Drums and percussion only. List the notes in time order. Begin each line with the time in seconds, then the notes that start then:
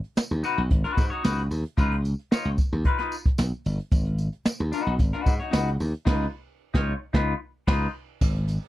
0.04 closed hi-hat
0.17 snare, tambourine
0.30 closed hi-hat
0.44 closed hi-hat, tambourine
0.58 closed hi-hat
0.70 kick, closed hi-hat
0.84 snare, closed hi-hat
0.97 kick, closed hi-hat, tambourine
1.11 closed hi-hat
1.24 snare, tambourine
1.38 closed hi-hat
1.51 open hi-hat, tambourine
1.65 closed hi-hat
1.77 kick, closed hi-hat, tambourine
1.91 closed hi-hat
2.04 closed hi-hat, tambourine
2.19 closed hi-hat
2.32 snare, tambourine
2.45 closed hi-hat
2.58 kick, closed hi-hat, tambourine
2.72 closed hi-hat
2.84 kick, closed hi-hat
2.98 snare, closed hi-hat
3.12 closed hi-hat, tambourine
3.26 kick, closed hi-hat
3.38 snare, tambourine
3.52 closed hi-hat
3.65 open hi-hat, tambourine
3.79 closed hi-hat
3.91 kick, closed hi-hat, tambourine
4.05 closed hi-hat
4.18 closed hi-hat, tambourine
4.32 closed hi-hat
4.45 snare, tambourine
4.59 closed hi-hat
4.72 closed hi-hat, tambourine
4.86 closed hi-hat
4.99 kick, closed hi-hat, tambourine
5.13 snare, closed hi-hat
5.26 kick, closed hi-hat, tambourine
5.40 closed hi-hat
5.53 snare, tambourine
5.67 closed hi-hat
5.80 open hi-hat, tambourine
5.94 closed hi-hat
6.06 kick, snare, crash
6.74 kick, snare
7.14 kick, snare
7.67 kick, snare, crash
8.21 kick, crash, tambourine
8.35 closed hi-hat
8.48 closed hi-hat, tambourine
8.62 closed hi-hat